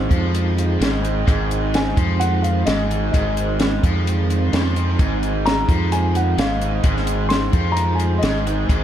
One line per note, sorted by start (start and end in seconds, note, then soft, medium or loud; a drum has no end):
0.00 1.06 G#3 medium
0.00 1.05 C4 medium
0.00 1.04 D#4 medium
0.00 1.03 G#4 medium
0.00 0.30 C5 medium
0.10 0.77 F2 medium
0.10 0.80 F3 medium
0.10 kick loud
0.10 closed hi-hat medium
0.35 closed hi-hat medium
0.58 closed hi-hat medium
0.80 1.24 G#1 medium
0.80 1.25 G#2 loud
0.80 snare loud
0.80 closed hi-hat medium
1.03 1.25 G#3 medium
1.03 1.27 C4 medium
1.03 1.28 D#4 medium
1.03 1.29 G#4 medium
1.03 closed hi-hat medium
1.26 1.93 G#1 medium
1.26 1.96 G#2 medium
1.26 2.93 G#3 medium
1.26 2.92 C4 medium
1.26 2.91 D#4 medium
1.26 kick loud
1.26 closed hi-hat medium
1.30 2.89 G#4 loud
1.51 closed hi-hat medium
1.74 2.22 G#5 medium
1.74 snare loud
1.74 closed hi-hat medium
1.97 2.62 F2 medium
1.97 2.66 F3 medium
1.97 kick loud
1.97 closed hi-hat medium
2.19 2.41 F#5 medium
2.19 closed hi-hat medium
2.42 2.67 F5 medium
2.42 closed hi-hat medium
2.65 3.10 G#1 medium
2.65 3.13 G#2 loud
2.65 3.09 D#5 medium
2.65 snare loud
2.65 closed hi-hat medium
2.90 3.12 G#3 medium
2.90 3.14 C4 medium
2.90 3.15 D#4 medium
2.90 3.16 G#4 medium
2.90 closed hi-hat medium
3.11 3.79 G#1 medium
3.11 3.82 G#2 medium
3.11 4.77 G#3 medium
3.11 4.76 C4 medium
3.11 4.01 D#5 medium
3.11 kick loud
3.11 closed hi-hat medium
3.15 4.75 D#4 loud
3.15 4.74 G#4 medium
3.37 closed hi-hat medium
3.60 snare loud
3.60 closed hi-hat medium
3.83 4.48 F2 medium
3.83 4.52 F3 loud
3.83 kick medium
3.83 closed hi-hat medium
4.07 closed hi-hat medium
4.30 closed hi-hat medium
4.53 4.96 F2 medium
4.53 4.99 F3 loud
4.53 snare loud
4.53 closed hi-hat medium
4.74 4.98 G#3 medium
4.74 4.98 C4 medium
4.74 5.00 D#4 medium
4.74 5.01 G#4 medium
4.74 closed hi-hat soft
4.98 5.65 G#1 medium
4.98 5.68 G#2 medium
4.98 6.63 G#3 medium
4.98 6.62 C4 medium
4.98 6.61 D#4 medium
4.98 6.60 G#4 medium
4.98 kick loud
4.98 closed hi-hat medium
5.23 closed hi-hat medium
5.46 5.93 A#5 loud
5.46 snare loud
5.46 closed hi-hat medium
5.69 6.34 F2 loud
5.69 6.38 F3 medium
5.69 kick loud
5.69 closed hi-hat medium
5.92 6.15 G#5 medium
5.92 closed hi-hat medium
6.15 6.39 F#5 medium
6.15 closed hi-hat medium
6.38 6.81 G#1 medium
6.38 6.83 G#2 medium
6.38 6.81 F5 medium
6.38 snare loud
6.38 closed hi-hat medium
6.60 6.82 G#3 medium
6.60 6.83 C4 medium
6.60 6.84 D#4 medium
6.60 6.85 G#4 medium
6.60 closed hi-hat medium
6.82 7.49 G#1 medium
6.82 7.53 G#2 medium
6.82 8.48 G#3 medium
6.82 8.46 C4 medium
6.82 8.45 D#4 medium
6.82 8.44 G#4 loud
6.82 kick loud
6.82 closed hi-hat medium
6.96 snare soft
7.07 closed hi-hat medium
7.29 7.72 C6 medium
7.29 snare loud
7.29 closed hi-hat medium
7.53 8.19 F2 medium
7.53 8.22 F3 loud
7.53 kick medium
7.53 closed hi-hat medium
7.72 7.96 A#5 medium
7.77 closed hi-hat medium
7.95 8.21 G#5 medium
8.00 closed hi-hat medium
8.18 8.63 D#5 medium
8.23 8.66 G#1 medium
8.23 8.68 G#2 medium
8.23 snare loud
8.23 closed hi-hat medium
8.44 8.67 G#3 medium
8.44 8.68 C4 medium
8.44 8.70 D#4 medium
8.44 8.70 G#4 medium
8.44 closed hi-hat medium
8.67 8.84 G#1 medium
8.67 8.84 G#2 loud
8.67 8.84 G#3 medium
8.67 8.84 C4 loud
8.67 8.84 D#4 medium
8.67 8.84 G#4 loud
8.67 kick medium
8.67 closed hi-hat medium